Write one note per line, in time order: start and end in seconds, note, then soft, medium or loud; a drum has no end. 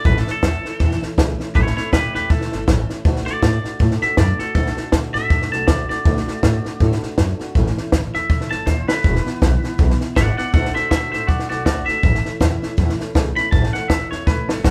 0.04 0.19 A1 loud
0.04 0.26 A2 medium
0.04 0.27 E3 medium
0.04 0.27 A3 loud
0.04 0.26 C#4 medium
0.04 0.25 E4 medium
0.04 0.19 B4 loud
0.04 kick loud
0.04 snare soft
0.17 0.30 A4 medium
0.17 snare soft
0.26 0.41 A3 soft
0.26 0.42 C#4 medium
0.26 0.42 E4 medium
0.26 muted upright bass stroke medium
0.26 snare soft
0.31 1.03 A4 medium
0.41 0.57 E2 loud
0.41 0.64 E3 medium
0.41 0.64 A3 medium
0.41 0.64 C#4 medium
0.41 0.62 E4 medium
0.41 kick medium
0.41 snare loud
0.41 hi-hat pedal medium
0.63 0.79 A3 medium
0.63 0.79 C#4 soft
0.63 0.79 E4 medium
0.63 muted upright bass stroke medium
0.63 snare soft
0.80 0.94 E2 medium
0.80 1.02 A2 medium
0.80 1.02 E3 loud
0.80 1.02 A3 medium
0.80 1.01 C#4 loud
0.80 1.00 E4 loud
0.80 kick loud
0.80 snare soft
0.91 snare soft
1.01 1.16 A3 medium
1.01 1.17 C#4 medium
1.01 1.17 E4 medium
1.01 muted upright bass stroke medium
1.01 snare soft
1.16 1.32 C#2 medium
1.16 1.39 E3 medium
1.16 1.39 A3 medium
1.16 1.38 C#4 medium
1.16 1.37 E4 medium
1.16 kick medium
1.16 snare loud
1.16 hi-hat pedal medium
1.38 1.54 A3 medium
1.38 1.54 C#4 medium
1.38 1.54 E4 medium
1.38 muted upright bass stroke medium
1.38 snare soft
1.54 1.70 A1 loud
1.54 1.76 A2 medium
1.54 1.77 E3 medium
1.54 1.77 A3 medium
1.54 1.77 C#4 medium
1.54 1.75 E4 medium
1.54 1.76 C#5 loud
1.54 kick loud
1.54 snare soft
1.67 snare soft
1.76 1.91 A3 soft
1.76 1.93 C#4 medium
1.76 1.91 E4 medium
1.76 1.92 E4 soft
1.76 1.92 C#5 loud
1.76 muted upright bass stroke medium
1.76 snare soft
1.92 2.07 A1 medium
1.92 2.14 E3 medium
1.92 2.14 A3 medium
1.92 2.14 C#4 medium
1.92 2.12 E4 medium
1.92 2.13 G4 medium
1.92 2.14 B4 medium
1.92 kick medium
1.92 snare loud
1.92 hi-hat pedal medium
2.14 2.25 E2 medium
2.14 2.29 A3 soft
2.14 2.30 C#4 medium
2.14 2.30 E4 medium
2.14 2.29 G4 medium
2.14 2.30 B4 medium
2.14 snare soft
2.30 2.45 C#2 medium
2.30 2.52 A2 medium
2.30 2.52 E3 medium
2.30 2.52 A3 medium
2.30 2.52 C#4 medium
2.30 2.51 E4 medium
2.30 3.03 A4 loud
2.30 kick loud
2.30 snare soft
2.41 snare soft
2.52 2.63 G1 medium
2.52 2.67 A3 soft
2.52 2.68 C#4 medium
2.52 2.68 E4 medium
2.52 snare soft
2.67 2.82 A1 medium
2.67 2.89 E3 medium
2.67 2.90 A3 medium
2.67 2.89 C#4 medium
2.67 2.88 E4 medium
2.67 kick medium
2.67 snare loud
2.67 hi-hat pedal medium
2.89 3.05 A3 medium
2.89 3.06 C#4 medium
2.89 3.05 E4 medium
2.89 muted upright bass stroke medium
2.89 snare soft
3.05 3.20 D2 loud
3.05 3.27 D3 medium
3.05 3.27 A3 loud
3.05 3.27 D4 medium
3.05 3.26 F#4 loud
3.05 kick loud
3.05 snare soft
3.16 snare soft
3.26 3.42 A3 soft
3.26 3.43 D4 soft
3.26 3.43 F#4 medium
3.26 3.99 D5 loud
3.26 muted upright bass stroke medium
3.26 snare soft
3.42 3.57 A2 medium
3.42 3.64 D3 medium
3.42 3.65 A3 medium
3.42 3.64 D4 medium
3.42 kick medium
3.42 snare loud
3.42 hi-hat pedal medium
3.64 3.79 A3 soft
3.64 3.79 D4 medium
3.64 3.80 F#4 medium
3.64 muted upright bass stroke medium
3.64 snare soft
3.79 3.95 A2 medium
3.79 4.02 D3 medium
3.79 4.02 A3 medium
3.79 4.02 D4 loud
3.79 4.01 F#4 medium
3.79 kick loud
3.79 snare soft
3.91 snare soft
4.02 4.17 A3 soft
4.02 4.18 D4 medium
4.02 4.18 F#4 medium
4.02 4.18 E5 loud
4.02 muted upright bass stroke medium
4.02 snare soft
4.17 4.32 F#2 medium
4.17 4.40 D3 medium
4.17 4.40 A3 medium
4.17 4.40 D4 medium
4.17 4.39 D5 medium
4.17 kick medium
4.17 snare loud
4.17 hi-hat pedal medium
4.39 4.55 A3 soft
4.39 4.56 D4 medium
4.39 4.55 F#4 medium
4.39 4.54 A4 medium
4.39 muted upright bass stroke medium
4.39 snare soft
4.55 4.70 D2 medium
4.55 4.77 D3 medium
4.55 4.78 A3 medium
4.55 4.77 D4 loud
4.55 4.76 F#4 loud
4.55 4.92 A4 loud
4.55 kick loud
4.55 snare soft
4.66 snare soft
4.77 4.93 A3 soft
4.77 4.94 D4 medium
4.77 4.93 F#4 medium
4.77 muted upright bass stroke medium
4.77 snare soft
4.92 5.07 D2 medium
4.92 5.15 D3 medium
4.92 5.15 A3 medium
4.92 5.15 D4 medium
4.92 5.14 F#4 medium
4.92 kick medium
4.92 snare loud
4.92 hi-hat pedal medium
5.14 5.25 A2 medium
5.14 5.30 A3 soft
5.14 5.30 D4 medium
5.14 5.30 F#4 medium
5.14 5.51 E5 loud
5.14 snare soft
5.30 5.45 F#2 medium
5.30 5.52 D3 medium
5.30 5.53 A3 medium
5.30 5.53 D4 medium
5.30 5.52 F#4 medium
5.30 kick loud
5.30 snare soft
5.42 snare soft
5.52 5.62 B1 loud
5.52 5.67 A3 medium
5.52 5.68 D4 medium
5.52 5.68 F#4 medium
5.52 5.67 A5 loud
5.52 snare soft
5.67 5.82 D2 medium
5.67 5.88 D5 loud
5.67 kick medium
5.67 snare loud
5.67 hi-hat pedal medium
5.89 6.05 A3 soft
5.89 6.05 D4 medium
5.89 6.05 F#4 medium
5.89 6.98 D5 loud
5.89 muted upright bass stroke medium
5.89 snare soft
6.05 6.20 D2 loud
6.05 6.27 D3 medium
6.05 6.27 A3 loud
6.05 6.26 D4 loud
6.05 6.25 F#4 medium
6.05 kick loud
6.05 snare soft
6.17 snare soft
6.26 6.43 A3 medium
6.26 6.43 D4 medium
6.26 6.42 F#4 medium
6.26 muted upright bass stroke medium
6.26 snare soft
6.43 6.57 A2 medium
6.43 6.65 D3 medium
6.43 6.65 A3 medium
6.43 6.65 D4 medium
6.43 6.63 F#4 medium
6.43 kick medium
6.43 snare loud
6.43 hi-hat pedal medium
6.64 6.80 A3 medium
6.64 6.80 D4 medium
6.64 6.80 F#4 medium
6.64 muted upright bass stroke medium
6.64 snare soft
6.80 6.95 A2 medium
6.80 7.02 D3 loud
6.80 7.02 A3 loud
6.80 7.03 D4 medium
6.80 7.01 F#4 loud
6.80 kick loud
6.80 snare soft
6.92 snare soft
7.02 7.17 A3 medium
7.02 7.18 D4 medium
7.02 7.17 F#4 medium
7.02 muted upright bass stroke medium
7.02 snare soft
7.18 7.32 F#2 loud
7.18 7.40 A3 medium
7.18 7.40 D4 medium
7.18 7.38 F#4 medium
7.18 kick medium
7.18 snare loud
7.18 hi-hat pedal medium
7.39 7.55 A3 medium
7.39 7.56 D4 medium
7.39 7.55 F#4 medium
7.39 muted upright bass stroke medium
7.39 snare soft
7.55 7.70 A1 loud
7.55 7.77 A2 medium
7.55 7.77 E3 medium
7.55 7.78 A3 loud
7.55 7.77 C#4 loud
7.55 7.76 E4 loud
7.55 kick loud
7.55 snare soft
7.67 snare soft
7.77 7.92 A3 medium
7.77 7.93 C#4 medium
7.77 7.93 E4 medium
7.77 muted upright bass stroke medium
7.77 snare soft
7.92 8.07 A1 medium
7.92 8.14 E3 medium
7.92 8.15 A3 medium
7.92 8.14 C#4 medium
7.92 8.12 E4 medium
7.92 kick loud
7.92 snare loud
7.92 hi-hat pedal medium
8.14 8.25 E2 medium
8.14 8.29 A3 soft
8.14 8.30 C#4 soft
8.14 8.29 E4 medium
8.14 8.51 E5 loud
8.14 snare soft
8.29 8.44 C#2 medium
8.29 8.51 A2 medium
8.29 8.52 E3 medium
8.29 8.52 A3 medium
8.29 8.51 C#4 medium
8.29 8.50 E4 medium
8.29 kick loud
8.29 snare soft
8.41 snare soft
8.51 8.62 G1 medium
8.51 8.66 A3 soft
8.51 8.66 C#4 medium
8.51 8.67 E4 medium
8.51 8.66 A5 loud
8.51 snare soft
8.65 8.81 D#2 medium
8.65 8.88 E3 medium
8.65 8.89 A3 medium
8.65 8.88 C#4 medium
8.65 8.87 E4 medium
8.65 8.88 C5 loud
8.65 kick medium
8.65 snare medium
8.65 hi-hat pedal medium
8.88 9.04 A3 soft
8.88 9.04 C#4 medium
8.88 9.03 E4 medium
8.88 9.97 B4 loud
8.88 muted upright bass stroke medium
8.88 snare medium
9.03 9.19 E1 loud
9.03 9.25 E2 medium
9.03 9.26 B2 medium
9.03 9.26 E3 medium
9.03 9.25 G#3 medium
9.03 9.25 B3 medium
9.03 9.23 E4 medium
9.03 kick loud
9.03 snare soft
9.15 snare soft
9.25 9.39 E3 medium
9.25 9.40 G#3 soft
9.25 9.41 B3 medium
9.25 9.41 E4 medium
9.25 muted upright bass stroke medium
9.25 snare soft
9.40 9.56 B1 medium
9.40 9.63 E3 medium
9.40 9.63 G#3 medium
9.40 9.62 B3 medium
9.40 9.61 E4 medium
9.40 kick medium
9.40 snare loud
9.40 hi-hat pedal medium
9.62 9.78 E3 medium
9.62 9.78 G#3 medium
9.62 9.79 B3 medium
9.62 9.79 E4 medium
9.62 muted upright bass stroke medium
9.62 snare soft
9.78 9.93 B1 medium
9.78 10.00 E2 medium
9.78 10.01 B2 loud
9.78 10.01 E3 loud
9.78 10.01 G#3 medium
9.78 10.00 B3 loud
9.78 9.99 E4 loud
9.78 kick loud
9.78 snare soft
9.90 snare soft
10.00 10.14 E3 medium
10.00 10.15 G#3 medium
10.00 10.16 B3 medium
10.00 10.16 E4 medium
10.00 muted upright bass stroke medium
10.00 snare soft
10.15 10.31 G#1 medium
10.15 10.38 E3 medium
10.15 10.38 G#3 medium
10.15 10.36 E4 medium
10.15 10.36 D5 loud
10.15 10.37 F#5 loud
10.15 kick medium
10.15 snare loud
10.15 hi-hat pedal medium
10.37 10.52 E3 soft
10.37 10.53 G#3 soft
10.37 10.54 B3 medium
10.37 10.53 E4 medium
10.37 10.52 D5 medium
10.37 10.53 F#5 loud
10.37 muted upright bass stroke medium
10.37 snare soft
10.52 10.68 D2 loud
10.52 10.75 D3 medium
10.52 10.75 A3 medium
10.52 10.75 D4 loud
10.52 10.74 F#4 medium
10.52 10.74 A4 medium
10.52 10.75 F#5 medium
10.52 kick loud
10.52 snare soft
10.65 snare soft
10.74 10.90 A3 soft
10.74 10.91 D4 medium
10.74 10.91 F#4 medium
10.74 10.89 C5 medium
10.74 10.90 E5 loud
10.74 muted upright bass stroke medium
10.74 snare soft
10.90 11.06 D2 loud
10.90 11.13 D3 medium
10.90 11.13 A3 medium
10.90 11.13 D4 medium
10.90 11.11 F#4 medium
10.90 11.11 C5 medium
10.90 11.11 E5 medium
10.90 kick medium
10.90 snare loud
10.90 hi-hat pedal medium
11.12 11.23 A2 medium
11.12 11.28 A3 soft
11.12 11.29 D4 soft
11.12 11.28 F#4 medium
11.12 11.27 C5 medium
11.12 11.27 E5 medium
11.12 snare soft
11.27 11.43 F#2 medium
11.27 11.50 D3 medium
11.27 11.51 A3 medium
11.27 11.50 D4 loud
11.27 11.48 F#4 medium
11.27 11.49 F#4 medium
11.27 11.48 D5 medium
11.27 kick loud
11.27 snare soft
11.39 snare soft
11.49 11.61 B1 medium
11.49 11.65 A3 soft
11.49 11.66 D4 medium
11.49 11.64 F#4 medium
11.49 11.66 F#4 medium
11.49 11.64 D5 medium
11.49 snare soft
11.65 11.80 D2 medium
11.65 11.87 D3 medium
11.65 11.88 A3 medium
11.65 11.87 D4 medium
11.65 11.86 F#4 medium
11.65 11.87 D5 medium
11.65 kick medium
11.65 snare loud
11.65 hi-hat pedal medium
11.86 12.03 A3 soft
11.86 12.03 D4 medium
11.86 12.03 F#4 medium
11.86 12.95 E5 loud
11.86 muted upright bass stroke medium
11.86 snare soft
12.03 12.18 A1 medium
12.03 12.25 A2 medium
12.03 12.25 E3 medium
12.03 12.25 A3 medium
12.03 12.25 C#4 medium
12.03 12.23 E4 loud
12.03 kick loud
12.03 snare soft
12.15 snare soft
12.24 12.39 A3 soft
12.24 12.40 C#4 medium
12.24 12.40 E4 medium
12.24 snare soft
12.40 12.55 E2 loud
12.40 12.62 E3 medium
12.40 12.62 A3 medium
12.40 12.62 C#4 medium
12.40 12.61 E4 medium
12.40 kick loud
12.40 snare loud
12.40 hi-hat pedal medium
12.62 12.77 A3 medium
12.62 12.77 C#4 medium
12.62 12.77 E4 medium
12.62 muted upright bass stroke medium
12.62 snare soft
12.77 12.92 E2 medium
12.77 12.99 A2 medium
12.77 12.99 E3 loud
12.77 12.99 A3 loud
12.77 12.99 C#4 loud
12.77 12.98 E4 loud
12.77 kick loud
12.77 snare soft
12.89 snare soft
12.99 13.13 A3 medium
12.99 13.14 C#4 medium
12.99 13.15 E4 medium
12.99 snare soft
13.14 13.30 C#2 medium
13.14 13.36 E3 medium
13.14 13.37 A3 medium
13.14 13.37 C#4 medium
13.14 13.36 E4 medium
13.14 kick medium
13.14 snare loud
13.14 hi-hat pedal medium
13.36 13.52 A3 soft
13.36 13.52 C#4 medium
13.36 13.52 E4 medium
13.36 13.51 B5 loud
13.36 snare soft
13.51 13.67 A1 loud
13.51 13.74 A2 medium
13.51 13.74 E3 medium
13.51 13.75 A3 medium
13.51 13.74 C#4 loud
13.51 13.73 E4 medium
13.51 13.73 A5 loud
13.51 kick loud
13.51 snare soft
13.63 snare soft
13.73 13.89 A3 medium
13.73 13.90 C#4 medium
13.73 13.90 E4 medium
13.73 13.89 F#5 medium
13.73 muted upright bass stroke medium
13.73 snare soft
13.88 14.04 A1 medium
13.88 14.11 E3 medium
13.88 14.12 C#4 medium
13.88 14.10 E5 medium
13.88 kick loud
13.88 snare loud
13.88 hi-hat pedal loud
13.92 14.10 E4 medium
14.11 14.22 E2 medium
14.11 14.27 A3 soft
14.11 14.28 C#4 medium
14.11 14.27 E4 medium
14.11 14.26 C#5 medium
14.11 snare soft
14.27 14.41 C#2 medium
14.27 14.49 A2 medium
14.27 14.49 E3 medium
14.27 14.50 A3 medium
14.27 14.49 C#4 medium
14.27 14.48 E4 medium
14.27 14.48 B4 loud
14.27 kick loud
14.27 snare medium
14.48 14.59 G1 loud
14.48 14.65 A3 medium
14.48 14.65 C#4 medium
14.48 14.64 E4 medium
14.48 14.64 A4 loud
14.48 snare medium
14.64 14.71 A1 medium
14.64 14.71 E3 medium
14.64 14.71 A3 medium
14.64 14.71 C#4 medium
14.64 14.71 E4 medium
14.64 14.71 F#4 medium
14.64 kick medium
14.64 snare medium
14.64 hi-hat pedal medium